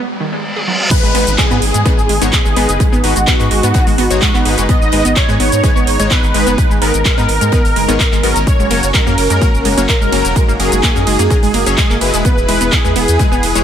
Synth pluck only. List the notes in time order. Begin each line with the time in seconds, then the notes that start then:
0.20 D#3
0.33 G#3
0.56 G#4
0.68 F#3
1.03 G#3
1.15 B3
1.38 G#3
1.51 B3
1.74 G#3
1.86 B3
2.09 G#3
2.22 B3
2.45 G#3
2.57 B3
2.80 G#3
2.92 B3
3.16 G#3
3.27 B3
3.51 G#3
3.63 B3
3.87 G#3
3.98 B3
4.22 G#3
4.34 B3
4.58 G#3
4.69 B3
4.93 G#3
5.05 B3
5.29 G#3
5.40 B3
5.64 G#3
5.76 B3
5.99 G#3
6.11 B3
6.34 G#3
6.47 B3
6.70 G#3
6.82 B3
7.05 G#3
7.18 B3
7.41 G#3
7.52 B3
7.76 G#3
7.88 B3
8.12 G#3
8.23 B3
8.59 G#3
8.71 A#3
8.94 G#3
9.07 A#3
9.30 G#3
9.42 A#3
9.65 G#3
9.78 A#3
10.01 G#3
10.12 A#3
10.36 G#3
10.48 A#3
10.72 G#3
10.83 A#3
11.07 G#3
11.19 A#3
11.43 G#3
11.54 A#3
11.78 G#3
11.90 A#3
12.14 G#3
12.25 B3
12.49 G#3
12.61 B3
12.85 G#3
12.96 B3
13.19 G#3
13.32 B3
13.55 G#3